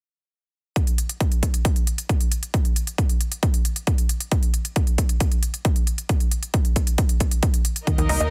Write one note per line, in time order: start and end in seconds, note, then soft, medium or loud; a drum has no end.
0.76 kick loud
0.76 closed hi-hat medium
0.87 closed hi-hat medium
0.98 closed hi-hat medium
1.09 closed hi-hat medium
1.21 kick loud
1.21 closed hi-hat medium
1.32 closed hi-hat soft
1.43 kick medium
1.43 closed hi-hat medium
1.54 closed hi-hat medium
1.65 kick loud
1.65 closed hi-hat medium
1.76 closed hi-hat medium
1.87 closed hi-hat medium
1.98 closed hi-hat medium
2.09 kick loud
2.09 closed hi-hat medium
2.21 closed hi-hat medium
2.32 closed hi-hat medium
2.43 closed hi-hat soft
2.54 kick loud
2.54 closed hi-hat medium
2.65 closed hi-hat soft
2.76 closed hi-hat medium
2.87 closed hi-hat soft
2.98 kick loud
2.98 closed hi-hat medium
3.09 closed hi-hat soft
3.21 closed hi-hat medium
3.32 closed hi-hat soft
3.43 kick loud
3.43 closed hi-hat medium
3.54 closed hi-hat medium
3.65 closed hi-hat medium
3.76 closed hi-hat medium
3.87 kick loud
3.87 closed hi-hat medium
3.98 closed hi-hat soft
4.09 closed hi-hat medium
4.20 closed hi-hat soft
4.31 kick loud
4.31 closed hi-hat medium
4.43 closed hi-hat soft
4.54 closed hi-hat medium
4.65 closed hi-hat soft
4.76 kick loud
4.76 closed hi-hat medium
4.87 closed hi-hat soft
4.98 kick medium
4.98 closed hi-hat medium
5.09 closed hi-hat soft
5.20 kick loud
5.20 closed hi-hat medium
5.32 closed hi-hat soft
5.43 closed hi-hat medium
5.54 closed hi-hat soft
5.65 kick loud
5.65 closed hi-hat medium
5.76 closed hi-hat soft
5.87 closed hi-hat medium
5.98 closed hi-hat soft
6.09 kick loud
6.09 closed hi-hat medium
6.20 closed hi-hat soft
6.31 closed hi-hat medium
6.43 closed hi-hat soft
6.54 kick loud
6.54 closed hi-hat medium
6.65 closed hi-hat soft
6.76 kick medium
6.76 closed hi-hat medium
6.87 closed hi-hat soft
6.98 kick loud
6.98 closed hi-hat medium
7.09 closed hi-hat soft
7.20 kick medium
7.20 closed hi-hat medium
7.31 closed hi-hat soft
7.43 kick loud
7.43 closed hi-hat medium
7.54 closed hi-hat soft
7.65 closed hi-hat medium
7.76 closed hi-hat soft
7.87 7.97 D#3 medium
7.87 8.30 F#3 medium
7.87 8.30 A#3 medium
7.87 8.30 D#4 medium
7.87 8.30 A#4 medium
7.87 8.30 D#5 medium
7.87 kick loud
7.87 closed hi-hat medium
7.98 8.07 D#2 medium
7.98 8.08 D#3 loud
7.98 closed hi-hat soft
8.09 8.18 C#2 loud
8.09 8.19 D#4 loud
8.09 open hi-hat loud
8.20 8.29 D#2 medium
8.20 8.27 D#5 medium
8.20 closed hi-hat soft